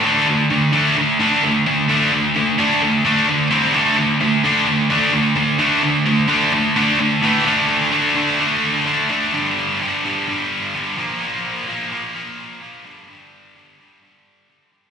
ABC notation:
X:1
M:4/4
L:1/8
Q:1/4=129
K:G
V:1 name="Distorted electric guitar" clef=bass
[D,A,D] [D,A,] [D,A,] [D,A,D] [D,A,] [D,A,D] [D,A,] [D,A,] | [D,A,D] [D,A,] [D,A,] [D,A,D] [D,A,] [D,A,D] [D,A,] [C,G,C] | [D,A,D] [D,A,] [D,A,] [D,A,D] [D,A,] [D,A,D] [D,A,] [D,A,] | [D,A,D] [D,A,] [D,A,] [D,A,D] [D,A,] [D,A,D] [D,A,] [A,,E,A,] |
[D,A,D]2 [D,A,D] [D,A,D] [D,A,D]2 [D,A,D] [D,A,D] | [G,,D,G,]2 [G,,D,G,] [G,,D,G,] [G,,D,G,]2 [G,,D,G,] [_B,,=F,_B,] | [_B,,=F,_B,]2 [B,,F,B,] [B,,F,B,] [B,,F,B,]2 [B,,F,B,] [G,,D,G,] | [G,,D,G,]2 [G,,D,G,] [G,,D,G,] [G,,D,G,]2 [G,,D,G,] [G,,D,G,] |]